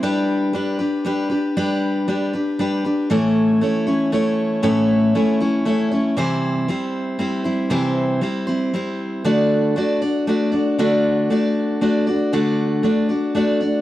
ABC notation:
X:1
M:3/4
L:1/8
Q:1/4=117
K:Dmix
V:1 name="Steel-string acoustic guitar"
[G,DGB]2 [G,DGB] [DGB] [G,DGB] [DGB] | [G,DGB]2 [G,DGB] [DGB] [G,DGB] [DGB] | [A,,E,A,^CE^c]2 [A,CEc] [A,CEc] [A,CEc]2 | [A,,E,A,^CE^c]2 [A,CEc] [A,CEc] [A,CEc] [A,CEc] |
[C,E,G,CEc]2 [G,CEc]2 [G,CEc] [G,CEc] | [C,E,G,CEc]2 [G,CEc] [G,CEc] [G,CEc]2 | [D,A,DFd]2 [A,DFd] [DFd] [A,DFd] [DFd] | [D,A,DFd]2 [A,DFd]2 [A,DFd] [DFd] |
[D,A,DFd]2 [A,DFd] [DFd] [A,DFd] [DFd] |]